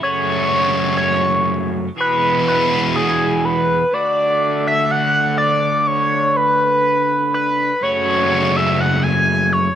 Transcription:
X:1
M:4/4
L:1/8
Q:1/4=123
K:F#m
V:1 name="Analog synth lead"
c4 c3 z | B2 B2 G2 B2 | d3 e f2 d2 | c2 B4 B2 |
c3 e f g2 c |]
V:2 name="Overdriven electric guitar" clef=bass
[F,,C,F,A,CF]8 | [E,,B,,E,G,B,G]8 | [D,A,DF]8- | [D,A,DF]8 |
[F,,C,F,A,CF]8 |]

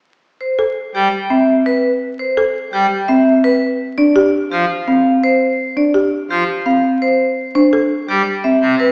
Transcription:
X:1
M:5/4
L:1/8
Q:1/4=168
K:C
V:1 name="Vibraphone"
z2 c z2 G z e z B | z2 c z2 G z e z B | z2 d z2 G z f z c | z2 d z2 G z f z c |
z2 c z2 G z e z B |]
V:2 name="Marimba"
z3 A z3 C z2 | z3 A z3 C z2 | z2 D G z3 C z2 | z2 D G z3 C z2 |
z2 D A z3 C z2 |]
V:3 name="Pipe organ" clef=bass
z4 z G, z4 | z4 z G, z4 | z4 z F, z4 | z4 z F, z4 |
z4 z G, z2 C, z |]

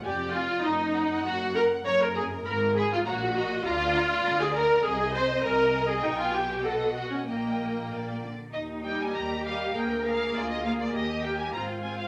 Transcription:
X:1
M:2/4
L:1/16
Q:1/4=100
K:Ebm
V:1 name="Violin section"
a2 a2 b2 b2 | b2 b2 b2 b2 | c'2 c'2 b2 b2 | [K:Eb] b2 b2 b2 b2 |
a2 a2 a2 a2 | a4 ^d4 | e4 d2 z2 | e2 g a b2 f2 |
g2 f2 d e f d | e2 g a b2 a f |]
V:2 name="Violin section"
=d4 e2 g2- | g4 B4- | B4 d2 e2 | [K:Eb] f2 d6 |
e8 | g4 ^f4 | g6 z2 | z2 [Be]4 [Be]2 |
B2 B4 B2 | z2 [Be]2 [Af]2 [Af]2 |]
V:3 name="Viola section"
=G2 F2 E4 | G2 B2 d B A2 | B2 A F G4 | [K:Eb] F4- F A B2 |
A2 c2 B3 A | E F G2 =A2 ^F _D | B,6 z2 | z2 [G,G]4 [G,G]2 |
[B,A]2 [B,A]4 [B,A]2 | z2 [B,G]2 [CF]2 [CF]2 |]
V:4 name="Cello section" clef=bass
F,,4 G,,4 | G,,4 G,,4 | A,,4 B,,4 | [K:Eb] D,4 D,4 |
C,4 C,4 | _C,8 | B,,4 B,,2 D,2 | E4 G4 |
B4 F4 | G4 F4 |]
V:5 name="Double bass section" clef=bass
F,,,4 G,,,4 | G,,,4 G,,,4 | A,,,4 B,,,4 | [K:Eb] D,,4 D,,4 |
C,,4 C,,4 | _C,,8 | B,,,6 z2 | E,,4 E,,4 |
D,,4 D,,4 | E,,4 A,,,4 |]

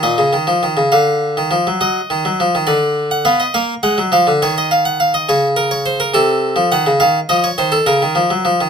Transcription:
X:1
M:6/8
L:1/16
Q:3/8=69
K:Ebm
V:1 name="Harpsichord"
e6 f6 | e6 =d3 g f e | f2 g2 f2 d e f g f e | d2 B d =c B =A4 g2 |
f2 e d =c =A B6 |]
V:2 name="Harpsichord" clef=bass
B,, D, E, F, E, D, =D,3 E, F, G, | G,2 E, G, F, E, =D,4 =B,2 | B,2 A, G, F, =D, E,6 | D,6 =C,3 F, E, D, |
E,2 F,2 E,2 D, E, F, G, F, E, |]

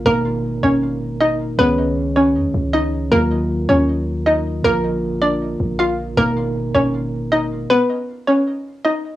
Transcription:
X:1
M:4/4
L:1/16
Q:1/4=157
K:Abdor
V:1 name="Synth pluck"
[B,B]6 [Dd]6 [Ee]4 | [Cc]6 [Dd]6 [Ee]4 | [B,B]6 [Dd]6 [Ee]4 | [B,B]6 [=D=d]6 [Ff]4 |
[B,B]6 [Dd]6 [Ee]4 | [Cc]6 [Dd]6 [Ee]4 |]
V:2 name="Tine electric piano"
[C,A,B,EB]16 | [E,A,DAd]16 | [E,G,B,FB]16 | [=D,F,B,FB]16 |
[C,A,B,EB]16 | z16 |]
V:3 name="808-style bass" clef=bass
A,,,6 A,,,8- A,,,2 | D,,8 F,, D,, D,,6 | E,,6 E,,8- E,,2 | B,,,8- B,,,2 B,,,6 |
A,,,6 A,,,8- A,,,2 | z16 |]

